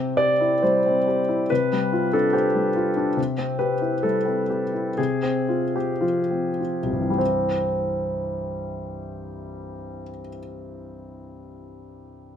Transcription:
0.00 1.45 C3 soft
0.00 0.32 C4 soft
0.17 0.54 G4 soft
0.17 0.63 D5 medium
0.41 0.76 E4 soft
0.62 0.98 G3 soft
0.62 1.49 C5 soft
0.86 1.20 C4 soft
1.07 1.41 G4 soft
1.29 1.50 E4 soft
1.50 3.14 C3 soft
1.50 2.13 B4 medium
1.72 2.05 G3 soft
1.93 2.26 F4 soft
2.13 2.47 D4 soft
2.13 2.34 A4 medium
2.33 2.67 C4 soft
2.33 3.17 G4 soft
2.55 2.88 G3 soft
2.76 3.09 F4 soft
2.96 3.17 D4 soft
3.17 4.94 C3 soft
3.38 3.73 C4 soft
3.59 3.95 G4 soft
3.59 4.03 B4 medium
3.82 4.17 E4 soft
4.03 4.40 G3 soft
4.03 4.97 A4 soft
4.25 4.63 C4 soft
4.49 4.88 G4 soft
4.74 4.98 E4 soft
4.98 7.16 C3 soft
4.98 5.75 G#4 soft
5.23 5.64 C4 soft
5.49 5.91 F4 soft
5.75 6.19 C4 soft
5.75 6.02 G4 soft
6.01 6.48 F3 soft
6.01 6.59 F4 soft
6.31 6.79 C4 soft
6.60 7.08 F4 soft
6.83 10.01 C2 soft
6.90 10.10 G2 soft
6.90 7.17 C4 soft
7.01 10.19 E3 soft
7.10 10.28 G3 soft
7.18 10.36 C4 soft

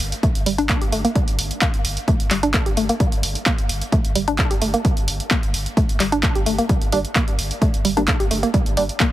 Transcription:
0.00 0.12 G1 loud
0.00 open hi-hat loud
0.12 closed hi-hat medium
0.23 0.28 A3 medium
0.23 kick loud
0.23 closed hi-hat medium
0.35 0.46 G1 medium
0.35 closed hi-hat medium
0.46 0.58 G1 medium
0.46 0.51 G3 medium
0.46 open hi-hat loud
0.58 0.69 G1 medium
0.58 0.63 D4 loud
0.58 closed hi-hat medium
0.69 0.74 A#3 medium
0.69 kick loud
0.69 clap loud
0.69 closed hi-hat medium
0.81 0.92 G1 medium
0.81 0.86 G4 medium
0.81 closed hi-hat medium
0.92 1.04 G1 loud
0.92 1.00 A3 medium
0.92 open hi-hat loud
1.05 1.09 A#3 medium
1.05 closed hi-hat medium
1.15 1.20 G3 medium
1.15 kick loud
1.15 closed hi-hat medium
1.28 1.38 G1 medium
1.28 closed hi-hat medium
1.39 1.50 G1 loud
1.39 open hi-hat loud
1.51 closed hi-hat medium
1.62 1.67 A#3 loud
1.62 kick loud
1.62 clap loud
1.62 closed hi-hat medium
1.74 1.84 G1 medium
1.74 closed hi-hat medium
1.85 1.97 G1 medium
1.85 open hi-hat loud
1.97 closed hi-hat medium
2.08 2.13 A3 medium
2.08 kick loud
2.08 closed hi-hat medium
2.20 2.30 G1 medium
2.20 closed hi-hat medium
2.31 2.42 G1 loud
2.31 2.36 G3 medium
2.31 clap medium
2.31 open hi-hat loud
2.43 2.54 G1 medium
2.43 2.47 D4 loud
2.43 closed hi-hat medium
2.54 2.59 A#3 loud
2.54 kick loud
2.54 clap loud
2.54 closed hi-hat medium
2.66 2.76 G1 medium
2.66 2.71 G4 medium
2.66 closed hi-hat medium
2.77 2.89 G1 loud
2.77 2.84 A3 medium
2.77 open hi-hat loud
2.89 2.94 A#3 medium
2.89 closed hi-hat medium
3.00 3.05 G3 medium
3.00 kick loud
3.00 closed hi-hat medium
3.12 3.22 G1 medium
3.12 closed hi-hat medium
3.23 3.35 G1 loud
3.23 open hi-hat loud
3.35 closed hi-hat medium
3.46 3.51 A#3 loud
3.46 kick loud
3.46 clap loud
3.46 closed hi-hat medium
3.58 3.69 G1 medium
3.58 closed hi-hat medium
3.69 3.81 G1 loud
3.69 open hi-hat loud
3.81 closed hi-hat medium
3.92 3.97 A3 medium
3.92 kick loud
3.92 closed hi-hat medium
4.05 4.15 G1 medium
4.05 closed hi-hat medium
4.15 4.27 G1 loud
4.15 4.20 G3 medium
4.15 open hi-hat loud
4.28 4.38 G1 medium
4.28 4.32 D4 loud
4.28 closed hi-hat medium
4.39 4.44 A#3 medium
4.39 kick loud
4.39 clap loud
4.39 closed hi-hat medium
4.51 4.61 G1 medium
4.51 4.55 G4 medium
4.51 closed hi-hat medium
4.62 4.74 G1 loud
4.62 4.69 A3 medium
4.62 open hi-hat loud
4.74 4.78 A#3 medium
4.74 closed hi-hat medium
4.85 4.90 G3 medium
4.85 kick loud
4.85 closed hi-hat medium
4.97 5.07 G1 medium
4.97 closed hi-hat medium
5.08 5.20 G1 medium
5.08 open hi-hat loud
5.20 closed hi-hat medium
5.31 5.36 A#3 loud
5.31 kick loud
5.31 clap loud
5.31 closed hi-hat medium
5.43 5.53 G1 medium
5.43 closed hi-hat medium
5.54 5.66 G1 loud
5.54 open hi-hat loud
5.66 closed hi-hat medium
5.77 5.82 A3 medium
5.77 kick loud
5.77 closed hi-hat medium
5.89 5.99 G1 medium
5.89 closed hi-hat medium
6.00 6.12 G1 loud
6.00 6.05 G3 medium
6.00 clap medium
6.00 open hi-hat loud
6.12 6.23 G1 medium
6.12 6.17 D4 loud
6.12 closed hi-hat medium
6.23 6.28 A#3 medium
6.23 kick loud
6.23 clap loud
6.23 closed hi-hat medium
6.35 6.46 G1 medium
6.35 6.40 G4 medium
6.35 closed hi-hat medium
6.46 6.58 G1 loud
6.46 6.54 A3 medium
6.46 open hi-hat loud
6.58 6.63 A#3 medium
6.58 closed hi-hat medium
6.69 6.74 G3 medium
6.69 kick loud
6.69 closed hi-hat medium
6.81 6.92 G1 medium
6.81 closed hi-hat medium
6.92 7.04 G1 loud
6.92 6.99 G3 loud
6.92 6.99 A#3 medium
6.92 6.99 D4 loud
6.92 open hi-hat loud
7.05 closed hi-hat medium
7.15 7.20 A#3 loud
7.15 kick loud
7.15 clap loud
7.15 closed hi-hat medium
7.28 7.38 G1 medium
7.28 closed hi-hat medium
7.39 7.50 G1 medium
7.39 open hi-hat loud
7.51 closed hi-hat medium
7.62 7.67 A3 medium
7.62 kick loud
7.62 closed hi-hat medium
7.74 7.84 G1 medium
7.74 closed hi-hat medium
7.85 7.96 G1 loud
7.85 7.90 G3 medium
7.85 open hi-hat loud
7.97 8.08 G1 medium
7.97 8.03 G3 loud
7.97 8.03 A#3 medium
7.97 8.03 D4 loud
7.97 8.01 D4 loud
7.97 closed hi-hat medium
8.08 8.13 A#3 loud
8.08 kick loud
8.08 clap loud
8.08 closed hi-hat medium
8.20 8.30 G1 medium
8.20 8.24 G4 medium
8.20 closed hi-hat medium
8.31 8.43 G1 loud
8.31 8.38 A3 medium
8.31 open hi-hat loud
8.43 8.47 A#3 medium
8.43 closed hi-hat medium
8.54 8.59 G3 medium
8.54 kick loud
8.54 closed hi-hat medium
8.66 8.76 G1 medium
8.66 closed hi-hat medium
8.77 8.89 G1 loud
8.77 8.84 G3 medium
8.77 8.84 A#3 medium
8.77 8.84 D4 loud
8.77 open hi-hat loud
8.89 closed hi-hat medium
9.00 9.05 A#3 loud
9.00 kick loud
9.00 clap loud
9.00 closed hi-hat medium

